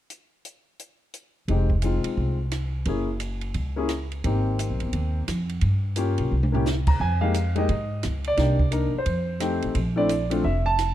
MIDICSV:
0, 0, Header, 1, 5, 480
1, 0, Start_track
1, 0, Key_signature, -4, "minor"
1, 0, Tempo, 344432
1, 155, Time_signature, 4, 2, 24, 8
1, 15250, End_track
2, 0, Start_track
2, 0, Title_t, "Grand piano"
2, 0, Program_c, 0, 0
2, 2078, Note_on_c, 0, 56, 45
2, 2092, Note_on_c, 0, 60, 39
2, 2097, Note_on_c, 0, 63, 38
2, 2102, Note_on_c, 0, 67, 51
2, 2348, Note_off_c, 0, 56, 0
2, 2355, Note_off_c, 0, 60, 0
2, 2357, Note_off_c, 0, 63, 0
2, 2360, Note_off_c, 0, 67, 0
2, 2560, Note_on_c, 0, 56, 41
2, 2568, Note_on_c, 0, 60, 36
2, 2575, Note_on_c, 0, 63, 36
2, 2582, Note_on_c, 0, 65, 47
2, 3280, Note_off_c, 0, 56, 0
2, 3284, Note_off_c, 0, 60, 0
2, 3287, Note_off_c, 0, 63, 0
2, 3291, Note_off_c, 0, 65, 0
2, 3991, Note_on_c, 0, 58, 45
2, 4007, Note_on_c, 0, 61, 42
2, 4013, Note_on_c, 0, 64, 42
2, 4021, Note_on_c, 0, 68, 48
2, 4266, Note_off_c, 0, 58, 0
2, 4274, Note_off_c, 0, 61, 0
2, 4277, Note_off_c, 0, 64, 0
2, 4281, Note_off_c, 0, 68, 0
2, 5244, Note_on_c, 0, 58, 53
2, 5252, Note_on_c, 0, 61, 49
2, 5257, Note_on_c, 0, 64, 49
2, 5271, Note_on_c, 0, 68, 56
2, 5415, Note_off_c, 0, 58, 0
2, 5419, Note_off_c, 0, 61, 0
2, 5421, Note_off_c, 0, 64, 0
2, 5428, Note_off_c, 0, 68, 0
2, 5910, Note_on_c, 0, 58, 44
2, 5920, Note_on_c, 0, 60, 43
2, 5928, Note_on_c, 0, 63, 39
2, 5937, Note_on_c, 0, 67, 51
2, 7250, Note_off_c, 0, 58, 0
2, 7255, Note_off_c, 0, 60, 0
2, 7259, Note_off_c, 0, 63, 0
2, 7264, Note_off_c, 0, 67, 0
2, 8308, Note_on_c, 0, 58, 51
2, 8322, Note_on_c, 0, 61, 46
2, 8326, Note_on_c, 0, 65, 47
2, 8334, Note_on_c, 0, 67, 58
2, 8797, Note_off_c, 0, 58, 0
2, 8804, Note_off_c, 0, 61, 0
2, 8806, Note_off_c, 0, 65, 0
2, 8810, Note_off_c, 0, 67, 0
2, 9089, Note_on_c, 0, 58, 54
2, 9104, Note_on_c, 0, 61, 47
2, 9113, Note_on_c, 0, 64, 48
2, 9118, Note_on_c, 0, 67, 61
2, 9259, Note_off_c, 0, 58, 0
2, 9267, Note_off_c, 0, 61, 0
2, 9271, Note_off_c, 0, 64, 0
2, 9274, Note_off_c, 0, 67, 0
2, 9583, Note_on_c, 0, 82, 83
2, 9652, Note_off_c, 0, 82, 0
2, 9768, Note_on_c, 0, 80, 83
2, 10046, Note_off_c, 0, 80, 0
2, 10050, Note_on_c, 0, 77, 76
2, 10053, Note_on_c, 0, 56, 53
2, 10066, Note_on_c, 0, 58, 51
2, 10078, Note_on_c, 0, 63, 51
2, 10079, Note_on_c, 0, 67, 57
2, 10221, Note_off_c, 0, 56, 0
2, 10228, Note_off_c, 0, 58, 0
2, 10234, Note_off_c, 0, 63, 0
2, 10234, Note_off_c, 0, 67, 0
2, 10504, Note_off_c, 0, 77, 0
2, 10528, Note_on_c, 0, 56, 57
2, 10538, Note_on_c, 0, 58, 50
2, 10549, Note_on_c, 0, 63, 51
2, 10556, Note_on_c, 0, 67, 60
2, 10567, Note_on_c, 0, 75, 74
2, 10699, Note_off_c, 0, 56, 0
2, 10703, Note_off_c, 0, 58, 0
2, 10709, Note_off_c, 0, 63, 0
2, 10712, Note_off_c, 0, 67, 0
2, 11170, Note_off_c, 0, 75, 0
2, 11534, Note_on_c, 0, 74, 88
2, 11664, Note_on_c, 0, 58, 43
2, 11674, Note_on_c, 0, 62, 40
2, 11687, Note_on_c, 0, 63, 39
2, 11695, Note_on_c, 0, 67, 51
2, 11944, Note_off_c, 0, 58, 0
2, 11949, Note_off_c, 0, 62, 0
2, 11956, Note_off_c, 0, 63, 0
2, 11960, Note_off_c, 0, 67, 0
2, 12133, Note_off_c, 0, 74, 0
2, 12141, Note_on_c, 0, 58, 44
2, 12148, Note_on_c, 0, 62, 43
2, 12155, Note_on_c, 0, 63, 41
2, 12165, Note_on_c, 0, 70, 50
2, 12422, Note_off_c, 0, 58, 0
2, 12425, Note_off_c, 0, 62, 0
2, 12429, Note_off_c, 0, 63, 0
2, 12434, Note_off_c, 0, 70, 0
2, 12521, Note_on_c, 0, 72, 63
2, 13101, Note_on_c, 0, 57, 54
2, 13110, Note_on_c, 0, 60, 52
2, 13122, Note_on_c, 0, 63, 50
2, 13126, Note_on_c, 0, 67, 61
2, 13395, Note_off_c, 0, 72, 0
2, 13590, Note_off_c, 0, 57, 0
2, 13595, Note_off_c, 0, 60, 0
2, 13601, Note_off_c, 0, 63, 0
2, 13603, Note_off_c, 0, 67, 0
2, 13879, Note_on_c, 0, 57, 56
2, 13887, Note_on_c, 0, 60, 51
2, 13897, Note_on_c, 0, 62, 52
2, 13900, Note_on_c, 0, 74, 78
2, 13903, Note_on_c, 0, 64, 61
2, 14051, Note_off_c, 0, 57, 0
2, 14055, Note_off_c, 0, 60, 0
2, 14060, Note_off_c, 0, 62, 0
2, 14063, Note_off_c, 0, 64, 0
2, 14346, Note_off_c, 0, 74, 0
2, 14357, Note_on_c, 0, 57, 54
2, 14365, Note_on_c, 0, 60, 50
2, 14382, Note_on_c, 0, 62, 51
2, 14388, Note_on_c, 0, 65, 58
2, 14530, Note_off_c, 0, 57, 0
2, 14534, Note_off_c, 0, 60, 0
2, 14542, Note_off_c, 0, 62, 0
2, 14545, Note_off_c, 0, 65, 0
2, 14556, Note_on_c, 0, 76, 75
2, 14836, Note_off_c, 0, 76, 0
2, 14853, Note_on_c, 0, 81, 94
2, 15250, Note_off_c, 0, 81, 0
2, 15250, End_track
3, 0, Start_track
3, 0, Title_t, "Upright bass"
3, 0, Program_c, 1, 32
3, 2063, Note_on_c, 1, 29, 69
3, 2796, Note_off_c, 1, 29, 0
3, 3025, Note_on_c, 1, 36, 65
3, 3944, Note_off_c, 1, 36, 0
3, 3982, Note_on_c, 1, 30, 72
3, 4904, Note_off_c, 1, 30, 0
3, 4944, Note_on_c, 1, 37, 65
3, 5865, Note_off_c, 1, 37, 0
3, 5908, Note_on_c, 1, 32, 72
3, 6511, Note_off_c, 1, 32, 0
3, 6551, Note_on_c, 1, 34, 51
3, 6706, Note_off_c, 1, 34, 0
3, 6720, Note_on_c, 1, 31, 53
3, 6863, Note_off_c, 1, 31, 0
3, 6871, Note_on_c, 1, 39, 62
3, 7324, Note_off_c, 1, 39, 0
3, 7355, Note_on_c, 1, 41, 58
3, 7806, Note_off_c, 1, 41, 0
3, 7828, Note_on_c, 1, 43, 71
3, 8562, Note_off_c, 1, 43, 0
3, 8618, Note_on_c, 1, 35, 55
3, 8789, Note_off_c, 1, 35, 0
3, 8798, Note_on_c, 1, 36, 62
3, 9714, Note_off_c, 1, 36, 0
3, 9754, Note_on_c, 1, 41, 71
3, 10671, Note_off_c, 1, 41, 0
3, 10717, Note_on_c, 1, 44, 70
3, 11167, Note_off_c, 1, 44, 0
3, 11213, Note_on_c, 1, 37, 59
3, 11655, Note_off_c, 1, 37, 0
3, 11666, Note_on_c, 1, 36, 68
3, 12399, Note_off_c, 1, 36, 0
3, 12625, Note_on_c, 1, 41, 67
3, 13358, Note_off_c, 1, 41, 0
3, 13426, Note_on_c, 1, 33, 55
3, 13575, Note_off_c, 1, 33, 0
3, 13583, Note_on_c, 1, 34, 72
3, 14501, Note_off_c, 1, 34, 0
3, 14548, Note_on_c, 1, 29, 68
3, 15250, Note_off_c, 1, 29, 0
3, 15250, End_track
4, 0, Start_track
4, 0, Title_t, "Muted upright bass strokes"
4, 2844, Note_on_c, 9, 29, 27
4, 2983, Note_off_c, 9, 29, 0
4, 12471, Note_on_c, 9, 29, 32
4, 12611, Note_off_c, 9, 29, 0
4, 15250, End_track
5, 0, Start_track
5, 0, Title_t, "Drums"
5, 139, Note_on_c, 9, 42, 44
5, 278, Note_off_c, 9, 42, 0
5, 623, Note_on_c, 9, 42, 43
5, 763, Note_off_c, 9, 42, 0
5, 1107, Note_on_c, 9, 42, 45
5, 1246, Note_off_c, 9, 42, 0
5, 1583, Note_on_c, 9, 42, 45
5, 1722, Note_off_c, 9, 42, 0
5, 2066, Note_on_c, 9, 51, 39
5, 2068, Note_on_c, 9, 36, 27
5, 2205, Note_off_c, 9, 51, 0
5, 2207, Note_off_c, 9, 36, 0
5, 2366, Note_on_c, 9, 36, 37
5, 2505, Note_off_c, 9, 36, 0
5, 2534, Note_on_c, 9, 44, 41
5, 2534, Note_on_c, 9, 51, 46
5, 2674, Note_off_c, 9, 44, 0
5, 2674, Note_off_c, 9, 51, 0
5, 2844, Note_on_c, 9, 51, 47
5, 2984, Note_off_c, 9, 51, 0
5, 3030, Note_on_c, 9, 36, 24
5, 3170, Note_off_c, 9, 36, 0
5, 3505, Note_on_c, 9, 44, 45
5, 3505, Note_on_c, 9, 51, 51
5, 3510, Note_on_c, 9, 37, 51
5, 3644, Note_off_c, 9, 44, 0
5, 3644, Note_off_c, 9, 51, 0
5, 3650, Note_off_c, 9, 37, 0
5, 3977, Note_on_c, 9, 51, 42
5, 3986, Note_on_c, 9, 36, 28
5, 4116, Note_off_c, 9, 51, 0
5, 4125, Note_off_c, 9, 36, 0
5, 4457, Note_on_c, 9, 44, 40
5, 4457, Note_on_c, 9, 51, 47
5, 4596, Note_off_c, 9, 44, 0
5, 4596, Note_off_c, 9, 51, 0
5, 4755, Note_on_c, 9, 51, 33
5, 4894, Note_off_c, 9, 51, 0
5, 4936, Note_on_c, 9, 51, 42
5, 4944, Note_on_c, 9, 36, 28
5, 5076, Note_off_c, 9, 51, 0
5, 5083, Note_off_c, 9, 36, 0
5, 5416, Note_on_c, 9, 44, 47
5, 5416, Note_on_c, 9, 51, 50
5, 5422, Note_on_c, 9, 37, 52
5, 5555, Note_off_c, 9, 44, 0
5, 5555, Note_off_c, 9, 51, 0
5, 5561, Note_off_c, 9, 37, 0
5, 5736, Note_on_c, 9, 51, 32
5, 5875, Note_off_c, 9, 51, 0
5, 5910, Note_on_c, 9, 51, 47
5, 5911, Note_on_c, 9, 36, 28
5, 6049, Note_off_c, 9, 51, 0
5, 6050, Note_off_c, 9, 36, 0
5, 6396, Note_on_c, 9, 44, 49
5, 6396, Note_on_c, 9, 51, 44
5, 6536, Note_off_c, 9, 44, 0
5, 6536, Note_off_c, 9, 51, 0
5, 6690, Note_on_c, 9, 51, 35
5, 6829, Note_off_c, 9, 51, 0
5, 6867, Note_on_c, 9, 51, 46
5, 6873, Note_on_c, 9, 36, 26
5, 7006, Note_off_c, 9, 51, 0
5, 7012, Note_off_c, 9, 36, 0
5, 7354, Note_on_c, 9, 44, 47
5, 7354, Note_on_c, 9, 51, 54
5, 7360, Note_on_c, 9, 37, 50
5, 7494, Note_off_c, 9, 44, 0
5, 7494, Note_off_c, 9, 51, 0
5, 7499, Note_off_c, 9, 37, 0
5, 7657, Note_on_c, 9, 51, 35
5, 7796, Note_off_c, 9, 51, 0
5, 7821, Note_on_c, 9, 51, 42
5, 7833, Note_on_c, 9, 36, 27
5, 7960, Note_off_c, 9, 51, 0
5, 7972, Note_off_c, 9, 36, 0
5, 8302, Note_on_c, 9, 44, 44
5, 8302, Note_on_c, 9, 51, 51
5, 8442, Note_off_c, 9, 44, 0
5, 8442, Note_off_c, 9, 51, 0
5, 8608, Note_on_c, 9, 51, 34
5, 8747, Note_off_c, 9, 51, 0
5, 8960, Note_on_c, 9, 48, 42
5, 9099, Note_off_c, 9, 48, 0
5, 9120, Note_on_c, 9, 43, 55
5, 9260, Note_off_c, 9, 43, 0
5, 9277, Note_on_c, 9, 44, 51
5, 9283, Note_on_c, 9, 38, 45
5, 9416, Note_off_c, 9, 44, 0
5, 9422, Note_off_c, 9, 38, 0
5, 9571, Note_on_c, 9, 49, 54
5, 9576, Note_on_c, 9, 36, 60
5, 9710, Note_off_c, 9, 49, 0
5, 9716, Note_off_c, 9, 36, 0
5, 9758, Note_on_c, 9, 36, 28
5, 9897, Note_off_c, 9, 36, 0
5, 10233, Note_on_c, 9, 44, 48
5, 10233, Note_on_c, 9, 51, 49
5, 10373, Note_off_c, 9, 44, 0
5, 10373, Note_off_c, 9, 51, 0
5, 10530, Note_on_c, 9, 51, 33
5, 10670, Note_off_c, 9, 51, 0
5, 10714, Note_on_c, 9, 51, 41
5, 10719, Note_on_c, 9, 36, 28
5, 10853, Note_off_c, 9, 51, 0
5, 10858, Note_off_c, 9, 36, 0
5, 11189, Note_on_c, 9, 44, 50
5, 11189, Note_on_c, 9, 51, 51
5, 11195, Note_on_c, 9, 37, 50
5, 11329, Note_off_c, 9, 44, 0
5, 11329, Note_off_c, 9, 51, 0
5, 11334, Note_off_c, 9, 37, 0
5, 11488, Note_on_c, 9, 51, 38
5, 11627, Note_off_c, 9, 51, 0
5, 11670, Note_on_c, 9, 51, 45
5, 11675, Note_on_c, 9, 38, 31
5, 11677, Note_on_c, 9, 36, 29
5, 11809, Note_off_c, 9, 51, 0
5, 11815, Note_off_c, 9, 38, 0
5, 11816, Note_off_c, 9, 36, 0
5, 11977, Note_on_c, 9, 36, 40
5, 12116, Note_off_c, 9, 36, 0
5, 12147, Note_on_c, 9, 44, 43
5, 12147, Note_on_c, 9, 51, 51
5, 12287, Note_off_c, 9, 44, 0
5, 12287, Note_off_c, 9, 51, 0
5, 12622, Note_on_c, 9, 51, 49
5, 12632, Note_on_c, 9, 36, 26
5, 12761, Note_off_c, 9, 51, 0
5, 12771, Note_off_c, 9, 36, 0
5, 13103, Note_on_c, 9, 44, 49
5, 13103, Note_on_c, 9, 51, 53
5, 13109, Note_on_c, 9, 37, 52
5, 13243, Note_off_c, 9, 44, 0
5, 13243, Note_off_c, 9, 51, 0
5, 13248, Note_off_c, 9, 37, 0
5, 13411, Note_on_c, 9, 51, 37
5, 13550, Note_off_c, 9, 51, 0
5, 13584, Note_on_c, 9, 51, 48
5, 13592, Note_on_c, 9, 36, 30
5, 13724, Note_off_c, 9, 51, 0
5, 13732, Note_off_c, 9, 36, 0
5, 14064, Note_on_c, 9, 44, 52
5, 14064, Note_on_c, 9, 51, 52
5, 14204, Note_off_c, 9, 44, 0
5, 14204, Note_off_c, 9, 51, 0
5, 14369, Note_on_c, 9, 51, 52
5, 14508, Note_off_c, 9, 51, 0
5, 14554, Note_on_c, 9, 36, 28
5, 14694, Note_off_c, 9, 36, 0
5, 15030, Note_on_c, 9, 44, 47
5, 15030, Note_on_c, 9, 51, 51
5, 15036, Note_on_c, 9, 37, 52
5, 15170, Note_off_c, 9, 44, 0
5, 15170, Note_off_c, 9, 51, 0
5, 15175, Note_off_c, 9, 37, 0
5, 15250, End_track
0, 0, End_of_file